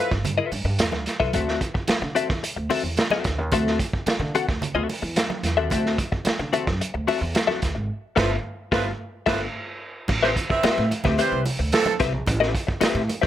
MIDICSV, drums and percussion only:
0, 0, Header, 1, 2, 480
1, 0, Start_track
1, 0, Tempo, 546946
1, 1173, Time_signature, 4, 2, 24, 8
1, 11645, End_track
2, 0, Start_track
2, 0, Title_t, "Drums"
2, 97, Note_on_c, 9, 38, 37
2, 101, Note_on_c, 9, 36, 99
2, 185, Note_off_c, 9, 38, 0
2, 189, Note_off_c, 9, 36, 0
2, 217, Note_on_c, 9, 62, 35
2, 217, Note_on_c, 9, 64, 79
2, 220, Note_on_c, 9, 42, 78
2, 304, Note_off_c, 9, 62, 0
2, 304, Note_off_c, 9, 64, 0
2, 308, Note_off_c, 9, 42, 0
2, 455, Note_on_c, 9, 46, 64
2, 462, Note_on_c, 9, 62, 54
2, 543, Note_off_c, 9, 46, 0
2, 549, Note_off_c, 9, 62, 0
2, 691, Note_on_c, 9, 42, 100
2, 693, Note_on_c, 9, 63, 69
2, 703, Note_on_c, 9, 38, 111
2, 779, Note_off_c, 9, 42, 0
2, 781, Note_off_c, 9, 63, 0
2, 790, Note_off_c, 9, 38, 0
2, 808, Note_on_c, 9, 63, 81
2, 819, Note_on_c, 9, 38, 36
2, 896, Note_off_c, 9, 63, 0
2, 907, Note_off_c, 9, 38, 0
2, 931, Note_on_c, 9, 42, 75
2, 942, Note_on_c, 9, 38, 39
2, 1018, Note_off_c, 9, 42, 0
2, 1029, Note_off_c, 9, 38, 0
2, 1054, Note_on_c, 9, 36, 101
2, 1142, Note_off_c, 9, 36, 0
2, 1170, Note_on_c, 9, 42, 81
2, 1171, Note_on_c, 9, 62, 52
2, 1174, Note_on_c, 9, 36, 74
2, 1258, Note_off_c, 9, 42, 0
2, 1258, Note_off_c, 9, 62, 0
2, 1262, Note_off_c, 9, 36, 0
2, 1301, Note_on_c, 9, 38, 38
2, 1389, Note_off_c, 9, 38, 0
2, 1413, Note_on_c, 9, 36, 73
2, 1414, Note_on_c, 9, 42, 70
2, 1501, Note_off_c, 9, 36, 0
2, 1501, Note_off_c, 9, 42, 0
2, 1536, Note_on_c, 9, 36, 90
2, 1624, Note_off_c, 9, 36, 0
2, 1646, Note_on_c, 9, 42, 78
2, 1648, Note_on_c, 9, 63, 76
2, 1663, Note_on_c, 9, 38, 97
2, 1733, Note_off_c, 9, 42, 0
2, 1736, Note_off_c, 9, 63, 0
2, 1750, Note_off_c, 9, 38, 0
2, 1894, Note_on_c, 9, 42, 62
2, 1897, Note_on_c, 9, 62, 55
2, 1982, Note_off_c, 9, 42, 0
2, 1985, Note_off_c, 9, 62, 0
2, 2013, Note_on_c, 9, 38, 35
2, 2018, Note_on_c, 9, 36, 98
2, 2100, Note_off_c, 9, 38, 0
2, 2106, Note_off_c, 9, 36, 0
2, 2138, Note_on_c, 9, 42, 76
2, 2226, Note_off_c, 9, 42, 0
2, 2373, Note_on_c, 9, 62, 59
2, 2374, Note_on_c, 9, 46, 75
2, 2461, Note_off_c, 9, 62, 0
2, 2462, Note_off_c, 9, 46, 0
2, 2604, Note_on_c, 9, 63, 66
2, 2609, Note_on_c, 9, 42, 93
2, 2621, Note_on_c, 9, 38, 118
2, 2692, Note_off_c, 9, 63, 0
2, 2697, Note_off_c, 9, 42, 0
2, 2709, Note_off_c, 9, 38, 0
2, 2725, Note_on_c, 9, 63, 97
2, 2735, Note_on_c, 9, 38, 33
2, 2812, Note_off_c, 9, 63, 0
2, 2823, Note_off_c, 9, 38, 0
2, 2845, Note_on_c, 9, 42, 76
2, 2852, Note_on_c, 9, 36, 104
2, 2856, Note_on_c, 9, 38, 36
2, 2933, Note_off_c, 9, 42, 0
2, 2940, Note_off_c, 9, 36, 0
2, 2944, Note_off_c, 9, 38, 0
2, 3086, Note_on_c, 9, 62, 56
2, 3088, Note_on_c, 9, 42, 88
2, 3091, Note_on_c, 9, 36, 95
2, 3173, Note_off_c, 9, 62, 0
2, 3176, Note_off_c, 9, 42, 0
2, 3179, Note_off_c, 9, 36, 0
2, 3221, Note_on_c, 9, 38, 35
2, 3309, Note_off_c, 9, 38, 0
2, 3330, Note_on_c, 9, 36, 80
2, 3332, Note_on_c, 9, 42, 76
2, 3418, Note_off_c, 9, 36, 0
2, 3420, Note_off_c, 9, 42, 0
2, 3453, Note_on_c, 9, 36, 84
2, 3541, Note_off_c, 9, 36, 0
2, 3566, Note_on_c, 9, 42, 71
2, 3570, Note_on_c, 9, 63, 78
2, 3583, Note_on_c, 9, 38, 112
2, 3653, Note_off_c, 9, 42, 0
2, 3658, Note_off_c, 9, 63, 0
2, 3670, Note_off_c, 9, 38, 0
2, 3815, Note_on_c, 9, 42, 70
2, 3821, Note_on_c, 9, 62, 57
2, 3903, Note_off_c, 9, 42, 0
2, 3908, Note_off_c, 9, 62, 0
2, 3935, Note_on_c, 9, 38, 36
2, 3937, Note_on_c, 9, 36, 107
2, 4023, Note_off_c, 9, 38, 0
2, 4025, Note_off_c, 9, 36, 0
2, 4053, Note_on_c, 9, 62, 37
2, 4053, Note_on_c, 9, 64, 77
2, 4060, Note_on_c, 9, 42, 75
2, 4141, Note_off_c, 9, 62, 0
2, 4141, Note_off_c, 9, 64, 0
2, 4148, Note_off_c, 9, 42, 0
2, 4295, Note_on_c, 9, 46, 73
2, 4296, Note_on_c, 9, 62, 62
2, 4383, Note_off_c, 9, 46, 0
2, 4384, Note_off_c, 9, 62, 0
2, 4531, Note_on_c, 9, 42, 94
2, 4532, Note_on_c, 9, 63, 72
2, 4542, Note_on_c, 9, 38, 114
2, 4618, Note_off_c, 9, 42, 0
2, 4620, Note_off_c, 9, 63, 0
2, 4630, Note_off_c, 9, 38, 0
2, 4652, Note_on_c, 9, 63, 90
2, 4739, Note_off_c, 9, 63, 0
2, 4770, Note_on_c, 9, 42, 72
2, 4781, Note_on_c, 9, 38, 39
2, 4858, Note_off_c, 9, 42, 0
2, 4869, Note_off_c, 9, 38, 0
2, 5003, Note_on_c, 9, 62, 47
2, 5013, Note_on_c, 9, 36, 83
2, 5013, Note_on_c, 9, 42, 86
2, 5091, Note_off_c, 9, 62, 0
2, 5100, Note_off_c, 9, 36, 0
2, 5100, Note_off_c, 9, 42, 0
2, 5142, Note_on_c, 9, 38, 34
2, 5230, Note_off_c, 9, 38, 0
2, 5251, Note_on_c, 9, 36, 82
2, 5254, Note_on_c, 9, 42, 83
2, 5339, Note_off_c, 9, 36, 0
2, 5342, Note_off_c, 9, 42, 0
2, 5374, Note_on_c, 9, 36, 81
2, 5462, Note_off_c, 9, 36, 0
2, 5484, Note_on_c, 9, 63, 78
2, 5486, Note_on_c, 9, 42, 78
2, 5503, Note_on_c, 9, 38, 107
2, 5572, Note_off_c, 9, 63, 0
2, 5574, Note_off_c, 9, 42, 0
2, 5591, Note_off_c, 9, 38, 0
2, 5732, Note_on_c, 9, 42, 71
2, 5735, Note_on_c, 9, 62, 60
2, 5820, Note_off_c, 9, 42, 0
2, 5823, Note_off_c, 9, 62, 0
2, 5851, Note_on_c, 9, 38, 35
2, 5857, Note_on_c, 9, 36, 107
2, 5938, Note_off_c, 9, 38, 0
2, 5945, Note_off_c, 9, 36, 0
2, 5979, Note_on_c, 9, 42, 76
2, 6067, Note_off_c, 9, 42, 0
2, 6212, Note_on_c, 9, 46, 71
2, 6216, Note_on_c, 9, 62, 66
2, 6300, Note_off_c, 9, 46, 0
2, 6303, Note_off_c, 9, 62, 0
2, 6449, Note_on_c, 9, 42, 104
2, 6450, Note_on_c, 9, 63, 63
2, 6460, Note_on_c, 9, 38, 112
2, 6536, Note_off_c, 9, 42, 0
2, 6538, Note_off_c, 9, 63, 0
2, 6548, Note_off_c, 9, 38, 0
2, 6569, Note_on_c, 9, 63, 85
2, 6578, Note_on_c, 9, 38, 37
2, 6657, Note_off_c, 9, 63, 0
2, 6666, Note_off_c, 9, 38, 0
2, 6687, Note_on_c, 9, 42, 75
2, 6694, Note_on_c, 9, 36, 93
2, 6699, Note_on_c, 9, 38, 38
2, 6775, Note_off_c, 9, 42, 0
2, 6782, Note_off_c, 9, 36, 0
2, 6786, Note_off_c, 9, 38, 0
2, 7172, Note_on_c, 9, 49, 77
2, 7173, Note_on_c, 9, 36, 104
2, 7180, Note_on_c, 9, 38, 97
2, 7260, Note_off_c, 9, 49, 0
2, 7261, Note_off_c, 9, 36, 0
2, 7267, Note_off_c, 9, 38, 0
2, 7653, Note_on_c, 9, 36, 113
2, 7659, Note_on_c, 9, 38, 102
2, 7741, Note_off_c, 9, 36, 0
2, 7746, Note_off_c, 9, 38, 0
2, 8131, Note_on_c, 9, 49, 78
2, 8134, Note_on_c, 9, 36, 121
2, 8139, Note_on_c, 9, 38, 114
2, 8219, Note_off_c, 9, 49, 0
2, 8222, Note_off_c, 9, 36, 0
2, 8226, Note_off_c, 9, 38, 0
2, 8847, Note_on_c, 9, 62, 60
2, 8854, Note_on_c, 9, 49, 83
2, 8855, Note_on_c, 9, 36, 94
2, 8934, Note_off_c, 9, 62, 0
2, 8942, Note_off_c, 9, 49, 0
2, 8943, Note_off_c, 9, 36, 0
2, 8984, Note_on_c, 9, 38, 40
2, 9072, Note_off_c, 9, 38, 0
2, 9094, Note_on_c, 9, 36, 74
2, 9097, Note_on_c, 9, 42, 79
2, 9182, Note_off_c, 9, 36, 0
2, 9185, Note_off_c, 9, 42, 0
2, 9217, Note_on_c, 9, 36, 99
2, 9305, Note_off_c, 9, 36, 0
2, 9331, Note_on_c, 9, 42, 79
2, 9333, Note_on_c, 9, 63, 80
2, 9348, Note_on_c, 9, 38, 127
2, 9418, Note_off_c, 9, 42, 0
2, 9420, Note_off_c, 9, 63, 0
2, 9435, Note_off_c, 9, 38, 0
2, 9578, Note_on_c, 9, 42, 73
2, 9582, Note_on_c, 9, 62, 59
2, 9665, Note_off_c, 9, 42, 0
2, 9669, Note_off_c, 9, 62, 0
2, 9687, Note_on_c, 9, 64, 75
2, 9694, Note_on_c, 9, 38, 38
2, 9699, Note_on_c, 9, 36, 107
2, 9774, Note_off_c, 9, 64, 0
2, 9782, Note_off_c, 9, 38, 0
2, 9787, Note_off_c, 9, 36, 0
2, 9813, Note_on_c, 9, 62, 43
2, 9818, Note_on_c, 9, 42, 79
2, 9900, Note_off_c, 9, 62, 0
2, 9906, Note_off_c, 9, 42, 0
2, 10053, Note_on_c, 9, 62, 67
2, 10054, Note_on_c, 9, 46, 68
2, 10141, Note_off_c, 9, 62, 0
2, 10142, Note_off_c, 9, 46, 0
2, 10287, Note_on_c, 9, 63, 71
2, 10290, Note_on_c, 9, 42, 102
2, 10302, Note_on_c, 9, 38, 118
2, 10375, Note_off_c, 9, 63, 0
2, 10378, Note_off_c, 9, 42, 0
2, 10389, Note_off_c, 9, 38, 0
2, 10406, Note_on_c, 9, 63, 91
2, 10493, Note_off_c, 9, 63, 0
2, 10528, Note_on_c, 9, 42, 79
2, 10534, Note_on_c, 9, 36, 102
2, 10540, Note_on_c, 9, 38, 39
2, 10616, Note_off_c, 9, 42, 0
2, 10621, Note_off_c, 9, 36, 0
2, 10627, Note_off_c, 9, 38, 0
2, 10764, Note_on_c, 9, 62, 53
2, 10772, Note_on_c, 9, 36, 103
2, 10772, Note_on_c, 9, 42, 91
2, 10851, Note_off_c, 9, 62, 0
2, 10859, Note_off_c, 9, 42, 0
2, 10860, Note_off_c, 9, 36, 0
2, 10904, Note_on_c, 9, 38, 35
2, 10991, Note_off_c, 9, 38, 0
2, 11010, Note_on_c, 9, 36, 82
2, 11015, Note_on_c, 9, 42, 78
2, 11098, Note_off_c, 9, 36, 0
2, 11102, Note_off_c, 9, 42, 0
2, 11132, Note_on_c, 9, 36, 106
2, 11220, Note_off_c, 9, 36, 0
2, 11243, Note_on_c, 9, 63, 84
2, 11246, Note_on_c, 9, 42, 80
2, 11263, Note_on_c, 9, 38, 123
2, 11331, Note_off_c, 9, 63, 0
2, 11334, Note_off_c, 9, 42, 0
2, 11351, Note_off_c, 9, 38, 0
2, 11491, Note_on_c, 9, 62, 60
2, 11492, Note_on_c, 9, 42, 62
2, 11579, Note_off_c, 9, 62, 0
2, 11580, Note_off_c, 9, 42, 0
2, 11610, Note_on_c, 9, 38, 39
2, 11614, Note_on_c, 9, 36, 112
2, 11645, Note_off_c, 9, 36, 0
2, 11645, Note_off_c, 9, 38, 0
2, 11645, End_track
0, 0, End_of_file